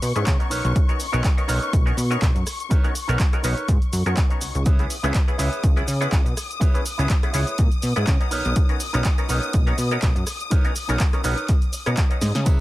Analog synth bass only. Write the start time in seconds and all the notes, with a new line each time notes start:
0.02 B2
0.16 G#2
0.27 C#3
0.51 B1
0.65 B1
1.14 B1
1.49 B1
1.73 B1
1.97 B2
2.22 B1
2.36 F#2
3.09 B1
3.44 B1
3.68 G#2
3.93 F#2
4.06 F#2
4.42 C#2
4.55 C#2
5.03 C#2
5.39 C#2
5.64 C#2
5.88 C#3
6.12 C#2
6.26 B2
6.99 C#2
7.34 C#2
7.59 A#2
7.83 B2
7.97 G#2
8.07 C#3
8.32 B1
8.46 B1
8.94 B1
9.29 B1
9.54 B1
9.78 B2
10.03 B1
10.16 F#2
10.89 B1
11.25 B1
11.87 B2
12.22 G#2
12.36 C#3